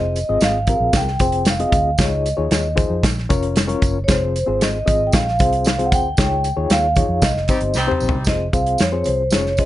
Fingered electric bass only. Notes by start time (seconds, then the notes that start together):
Already playing: F1
0.30 G#1
0.41 G#1
0.80 A#1
0.94 C2
1.20 F1
1.73 D2
1.99 C#2
2.38 D#2
2.51 D#2
2.90 F2
3.04 A#1
3.31 F1
3.83 F#1
4.09 F1
4.48 G#1
4.88 G#1
5.13 A#1
5.40 C2
5.92 D2
6.18 C#2
6.57 D#2
6.70 D#2
7.09 F2
7.22 C2
7.36 F1
7.62 G1
7.76 C2
8.02 A#1
8.15 C2
8.27 F1
8.54 C2
8.81 F2
9.08 C2
9.34 F1